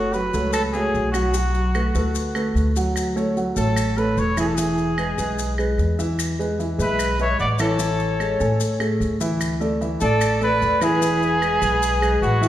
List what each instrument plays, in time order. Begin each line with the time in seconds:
Already playing: upright bass F#1, grand piano A3 A4 C#5, trumpet F#4
0.13 grand piano F#3 F#4 F#5, trumpet B4, maracas
0.34 upright bass C#2, grand piano A3 A4 C#5, maracas
0.53 trumpet A4, claves, maracas
0.73 grand piano A3 F#4 C#5, trumpet G#4, maracas
0.94 upright bass B1, maracas
1.12 grand piano F#3 F#4 F#5, trumpet F#4, claves, maracas
1.34 grand piano F#3 F#4 F#5, maracas
1.55 maracas
1.75 grand piano A3 A4 B4, claves, maracas
1.95 upright bass D2, grand piano A3 A4 B4, maracas
2.15 maracas
2.35 grand piano A3 A4 B4, claves, maracas
2.55 upright bass D2, maracas
2.76 grand piano F#3 F#4 F#5, maracas
2.96 claves, maracas
3.16 grand piano A3 A4 C#5, maracas
3.37 grand piano F#3 F#4 F#5, maracas
3.56 upright bass A1, grand piano A3 A4 C#5, trumpet A4, maracas
3.76 claves, maracas
3.97 grand piano A3 A4 C#5, trumpet B4, maracas
4.17 upright bass E1, trumpet C#5, maracas
4.37 grand piano E3 E4 E5, trumpet G#4, claves, maracas
4.47 trumpet A4
4.55 grand piano E3 E4 E5, trumpet G#4, maracas
4.78 maracas
4.98 grand piano G#3 G#4 B4, claves, maracas
5.18 upright bass B1, grand piano G#3 G#4 B4, maracas
5.39 maracas
5.58 grand piano G#3 G#4 B4, claves, maracas
5.78 upright bass E2, maracas
5.99 grand piano E3 E4 E5, maracas
6.19 claves, maracas
6.39 grand piano G#3 G#4 B4, maracas
6.59 grand piano E3 E4 E5, maracas
6.78 upright bass B1, grand piano G#3 G#4 B4, trumpet B4, flute E5, maracas
6.99 claves, maracas
7.19 grand piano G#3 G#4 B4, trumpet C#5, flute E5, maracas
7.39 upright bass A1, trumpet D5, flute F#5, maracas
7.59 grand piano E3 E4 E5, trumpet A4, flute C#5, claves, maracas
7.79 grand piano E3 E4 E5, maracas
8.00 maracas
8.20 grand piano G#3 G#4 A4, claves, maracas
8.40 upright bass A2, grand piano A3 A4 G#5, maracas
8.60 maracas
8.80 grand piano A3 G#4 A4, claves, maracas
9.00 upright bass D2, maracas
9.20 grand piano E3 E4 E5, maracas
9.41 claves, maracas
9.60 grand piano A3 A4 D5, maracas
9.81 grand piano E3 E4 E5, maracas
10.01 upright bass A1, grand piano A3 A4 D5, trumpet A4, flute D5, maracas
10.21 claves, maracas
10.41 grand piano A3 A4 D5, trumpet B4, flute D5, maracas
10.62 upright bass E1, maracas
10.81 grand piano E3 E4 E5, trumpet G#4, flute B4, claves, maracas
11.01 grand piano E3 E4 E5, maracas
11.23 maracas
11.41 grand piano G#3 B4, claves, maracas
11.62 upright bass B1, grand piano G#3 G#4 B4, maracas
11.83 maracas
12.01 grand piano G#3 G#4 B4, claves, maracas
12.22 upright bass A1, trumpet F#4, flute B4, maracas
12.41 grand piano E3 E4 E5, maracas